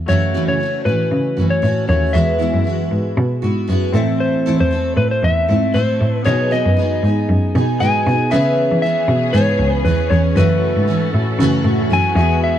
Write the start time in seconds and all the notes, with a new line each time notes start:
0.06 F#2 C#3 E3 A3 C#4 F#4 C#5 E5
0.10 F#4
0.34 F#2 C#3 E3 A3 C#4 F#4
0.48 C#3 C#5
0.60 E3 A3 C#4 F#4
0.85 A2 A3 C#4 F#4 B4
0.89 E3
1.11 C#3
1.37 F#2 E3 A3 C#4 F#4
1.50 C#5
1.62 A2 E3 A3 C#4 F#4
1.87 D#2 E3 A3 C#4 F#4 C#5 E5
2.13 E2 E3 G#3 B3 E4 F#4 E5
2.38 E3 G#3 B3 E4 F#4
2.54 F#2
2.64 G#3 B3 E4 F#4
2.91 G#2
3.17 B2
3.42 G#2 B3 E4 F#4
3.68 F#2 G#3 B3 E4 F#4
3.92 A2 E3 A3 C4 E4 A4 E5
4.20 C5
4.46 A2 E3 A3 C4 E4 A4
4.60 E2 C5
4.71 A3 C4 E4 A4
4.97 A2 B4
5.11 C5
5.22 E2 E5
5.48 G#2 A3 C4 E4 A4
5.74 A2 A3 C4 E4 A4 C5
6.01 A2
6.13 B4
6.23 B2 F#3 B3 D#4 G#4 C#5
6.27 G#4 D#5
6.51 B2 F#3 B3 D#4 G#4 D#5
6.65 F#2
6.77 F#3 B3 D#4 G#4
7.03 G#2 B3 D#4 G#4
7.29 F#2
7.55 B2 B3 D#4 G#4
7.79 G#2 F#3 B3 D#4 G#4 D#5 G#5
8.06 B2 B3 D#4 G#4
8.30 C#3 E3 B3 C#4 G#4 B4 E5
8.71 E3
8.82 E3 B3 C#4 G#4 E5
9.08 B2
9.33 G#2 C#3 E3 B3 C#4 G#4 C#5
9.59 C#2
9.85 E2 E3 B3 C#4 G#4 B4
10.10 E2 B3 C#4 G#4 C#5
10.35 F#2 C#3 E3 A3 C#4 E4 F#4 A4 B4
10.39 E5
10.76 G#2
10.88 E3 A3 C#4 F#4
11.14 A2
11.39 F#2 C#3 E3 A3 C#4 F#4
11.64 A2
11.90 F#2 E3 A3 C#4 F#4 G#5
12.15 E2 G#3 B3 F#4 G#4 E5
12.19 E3
12.44 E5